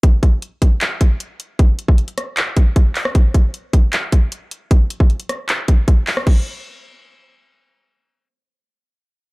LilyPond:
\new DrumStaff \with { instrumentName = "Drums" } \drummode { \time 4/4 \tempo 4 = 154 <hh bd>8 <hh bd>8 hh8 <hh bd>8 <hc hh>8 <hh bd>8 hh8 hh8 | <hh bd>8 hh16 bd16 hh16 hh16 <hh ss>8 <hc hh>8 <hh bd>8 <hh bd>8 <hc hho>16 ss16 | <hh bd>8 <hh bd>8 hh8 <hh bd>8 <hc hh>8 <hh bd>8 hh8 hh8 | <hh bd>8 hh16 bd16 hh16 hh16 <hh ss>8 <hc hh>8 <hh bd>8 <hh bd>8 <hc hho>16 ss16 |
<cymc bd>4 r4 r4 r4 | r4 r4 r4 r4 | }